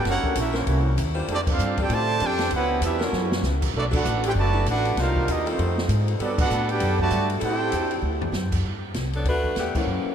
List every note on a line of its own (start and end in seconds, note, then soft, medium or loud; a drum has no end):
0.04 0.22 F#1 medium
0.04 0.34 A#3 medium
0.04 0.34 C#4 medium
0.04 0.34 F#4 medium
0.04 snare soft
0.04 ride medium
0.09 0.36 E4 loud
0.09 0.36 A#4 medium
0.09 0.36 C#5 loud
0.09 0.36 F#5 loud
0.23 muted upright bass stroke soft
0.23 kick medium
0.35 0.65 A#1 medium
0.35 0.54 A#3 medium
0.35 0.54 C#4 medium
0.35 0.54 E4 medium
0.35 0.55 A#4 medium
0.35 hi-hat pedal medium
0.35 ride medium
0.39 0.55 C#4 medium
0.39 0.55 F#4 medium
0.39 0.55 E5 loud
0.52 0.95 E3 medium
0.52 0.62 F#3 loud
0.52 0.95 A#3 medium
0.52 0.62 C4 medium
0.52 0.95 C#4 medium
0.52 0.61 E4 medium
0.52 0.61 A#4 loud
0.52 snare soft
0.58 0.96 A#3 medium
0.58 0.96 E4 medium
0.58 0.97 F#4 medium
0.58 0.97 C#5 medium
0.66 0.96 C2 loud
0.66 ride medium
0.97 1.27 D#2 loud
0.97 hi-hat pedal soft
0.97 ride medium
1.15 1.56 G3 loud
1.15 1.56 D4 loud
1.15 1.56 F4 loud
1.15 1.56 C5 loud
1.27 1.58 F2 medium
1.27 1.37 D3 medium
1.27 1.37 A3 medium
1.27 1.37 D4 medium
1.27 ride medium
1.32 1.40 C4 loud
1.32 1.40 G4 medium
1.32 1.40 A4 medium
1.32 1.40 D5 loud
1.47 1.77 C4 loud
1.47 1.77 D4 loud
1.47 1.77 F4 medium
1.47 kick loud
1.47 crash medium
1.52 1.78 D4 medium
1.52 1.78 A4 loud
1.52 1.78 C5 medium
1.52 1.78 F5 loud
1.58 1.88 G2 loud
1.58 hi-hat pedal medium
1.77 2.18 G3 loud
1.77 1.91 C4 loud
1.77 2.18 D4 medium
1.77 1.91 D4 medium
1.77 2.18 F4 loud
1.77 1.91 G4 medium
1.77 2.18 A4 loud
1.77 1.91 A4 medium
1.77 1.91 C5 medium
1.77 kick medium
1.77 ride medium
1.82 1.91 G5 loud
1.89 2.19 A2 loud
1.89 2.22 C3 loud
1.89 2.22 D3 loud
1.89 2.22 A3 loud
1.89 ride medium
1.94 2.23 G4 loud
1.94 2.23 C5 loud
1.94 2.23 D5 loud
1.94 2.23 A5 loud
2.20 2.50 F2 loud
2.20 2.52 C4 medium
2.20 2.52 D4 medium
2.20 2.52 G4 loud
2.20 hi-hat pedal soft
2.20 ride medium
2.25 2.54 D4 loud
2.25 2.54 A4 loud
2.25 2.54 C5 loud
2.25 2.54 G5 loud
2.39 snare medium
2.39 ride medium
2.51 2.80 C#2 medium
2.51 2.81 G3 medium
2.51 2.81 B3 medium
2.51 2.81 F#4 medium
2.51 ride medium
2.55 2.82 E4 medium
2.55 2.82 B4 loud
2.55 2.82 C#5 medium
2.55 2.82 F#5 loud
2.81 3.11 E2 loud
2.81 3.00 G3 medium
2.81 3.00 B3 medium
2.81 3.00 E4 medium
2.81 hi-hat pedal medium
2.81 ride medium
2.85 3.01 C#4 medium
2.85 3.01 G4 medium
2.85 3.01 B4 medium
2.85 3.01 E5 loud
2.99 3.44 E3 medium
2.99 3.40 F#3 loud
2.99 3.44 A#3 medium
2.99 3.41 C#4 loud
2.99 3.45 C#4 medium
2.99 3.41 E4 loud
2.99 3.41 A#4 loud
2.99 snare medium
3.04 3.46 A#3 medium
3.04 3.45 E4 medium
3.04 3.45 F#4 medium
3.04 3.45 C#5 medium
3.12 3.42 F#2 loud
3.12 snare medium
3.32 snare medium
3.42 3.73 C#2 loud
3.42 snare medium
3.42 hi-hat pedal medium
3.62 kick medium
3.62 crash medium
3.74 4.04 B1 medium
3.74 3.84 F#3 medium
3.74 3.84 A3 medium
3.74 3.85 B3 medium
3.74 3.84 D4 medium
3.74 3.85 F#4 medium
3.74 3.85 A4 medium
3.74 3.84 D5 loud
3.92 4.00 F#3 loud
3.92 4.22 A3 loud
3.92 4.01 B3 medium
3.92 4.01 D4 loud
3.92 4.22 D4 medium
3.92 4.23 D4 medium
3.92 4.23 F#4 medium
3.92 4.01 A4 loud
3.92 4.22 A4 medium
3.92 4.23 B4 medium
3.92 4.23 F#5 loud
3.92 kick loud
3.92 crash loud
4.04 4.35 A1 loud
4.04 hi-hat pedal medium
4.24 4.32 E4 medium
4.24 4.31 G4 medium
4.24 ride medium
4.28 4.32 A4 medium
4.28 4.32 C5 medium
4.28 4.32 G5 loud
4.35 4.65 F#1 loud
4.35 4.65 D3 medium
4.35 4.65 F#3 medium
4.35 4.65 A3 medium
4.35 4.66 F#4 loud
4.35 4.66 B4 medium
4.35 4.66 D5 loud
4.35 4.66 A5 loud
4.53 4.94 F#3 loud
4.53 4.94 B3 medium
4.53 4.95 D4 medium
4.53 4.94 E4 loud
4.66 4.95 A1 loud
4.66 4.97 A3 medium
4.66 4.97 D4 medium
4.66 4.97 F#4 medium
4.66 4.97 B4 loud
4.66 hi-hat pedal medium
4.66 ride medium
4.70 4.97 D4 loud
4.70 4.97 A4 loud
4.70 4.97 F#5 loud
4.85 ride medium
4.96 5.26 C2 medium
4.96 5.29 G3 medium
4.96 5.29 A#3 medium
4.96 5.29 F4 medium
4.96 snare soft
4.96 ride medium
5.00 5.29 D#4 loud
5.00 5.29 A#4 loud
5.00 5.29 C5 loud
5.00 5.29 F5 loud
5.16 kick medium
5.28 5.57 D#2 medium
5.28 5.48 G3 medium
5.28 5.48 A#3 medium
5.28 5.48 C4 medium
5.28 5.48 D#4 medium
5.28 5.48 G4 medium
5.28 5.48 A#4 medium
5.28 5.48 D#5 loud
5.28 hi-hat pedal medium
5.28 ride medium
5.47 5.88 D#3 medium
5.47 5.87 G3 loud
5.47 5.87 A3 medium
5.47 5.88 A3 medium
5.47 5.87 C4 medium
5.47 5.87 D#4 medium
5.47 5.88 D#4 medium
5.47 5.87 F4 medium
5.47 5.88 G4 medium
5.47 5.87 A4 loud
5.47 5.88 C5 medium
5.47 ride medium
5.58 5.88 F2 loud
5.58 ride medium
5.78 snare medium
5.88 6.18 G#2 loud
5.88 hi-hat pedal medium
5.88 ride medium
6.08 ride medium
6.19 6.49 G2 medium
6.19 6.37 F#3 medium
6.19 6.65 G3 loud
6.19 6.65 B3 loud
6.19 6.37 B3 medium
6.19 6.39 B3 medium
6.19 6.37 D4 medium
6.19 6.65 F#4 medium
6.19 6.39 F#4 medium
6.19 6.65 A4 loud
6.19 6.38 A4 medium
6.19 6.38 D5 loud
6.19 ride medium
6.38 6.67 B3 loud
6.38 6.67 D4 loud
6.38 6.68 D4 medium
6.38 6.67 F#4 medium
6.38 6.68 A4 medium
6.38 6.68 B4 medium
6.38 6.68 F#5 loud
6.38 kick loud
6.38 crash medium
6.50 6.80 A2 medium
6.50 hi-hat pedal medium
6.69 7.00 B3 loud
6.69 7.00 D4 loud
6.69 7.00 D4 medium
6.69 7.00 G4 medium
6.69 7.01 A4 medium
6.69 7.00 B4 loud
6.69 7.00 G5 loud
6.69 ride medium
6.80 7.10 F#2 loud
6.80 ride medium
6.99 7.29 D3 loud
6.99 7.29 F#3 loud
6.99 7.29 A3 medium
6.99 7.29 F#4 loud
6.99 7.29 B4 loud
6.99 7.29 D5 loud
6.99 7.29 A5 loud
6.99 kick medium
7.10 7.41 G2 loud
7.10 hi-hat pedal medium
7.10 ride medium
7.30 ride medium
7.40 7.71 A2 medium
7.40 8.02 G3 loud
7.40 8.02 C4 loud
7.40 8.00 C4 medium
7.40 8.02 E4 loud
7.40 8.00 E4 medium
7.40 8.00 G4 medium
7.40 8.02 A4 loud
7.40 8.00 A4 medium
7.40 ride medium
7.44 8.00 C5 medium
7.44 8.00 G5 loud
7.72 8.01 E2 medium
7.72 hi-hat pedal medium
7.72 ride medium
7.91 ride medium
8.02 8.32 D2 loud
8.21 floor tom medium
8.32 8.63 F#2 loud
8.32 snare medium
8.32 hi-hat pedal soft
8.52 kick medium
8.52 crash medium
8.64 8.93 G2 medium
8.94 9.24 C2 medium
8.94 snare medium
8.94 hi-hat pedal medium
8.94 ride medium
9.13 9.25 F#3 medium
9.13 9.26 B3 medium
9.13 9.26 D4 medium
9.13 9.26 A4 medium
9.13 ride medium
9.24 9.55 D2 medium
9.24 9.55 A3 medium
9.24 9.55 D4 medium
9.24 9.55 F#4 medium
9.24 ride medium
9.28 9.56 B4 loud
9.44 kick medium
9.55 9.73 E2 loud
9.55 9.74 D3 medium
9.55 9.74 A3 medium
9.55 9.74 B3 medium
9.55 9.74 G4 medium
9.55 snare medium
9.55 hi-hat pedal medium
9.55 ride medium
9.74 10.15 E3 medium
9.74 10.15 F#3 medium
9.74 10.15 A#3 medium
9.74 10.15 C#4 medium
9.74 10.15 E4 medium
9.74 10.15 F#4 medium
9.74 10.15 C5 medium
9.74 muted upright bass stroke soft
9.74 kick medium
9.74 crash medium
9.86 10.04 F#2 medium
10.05 muted upright bass stroke soft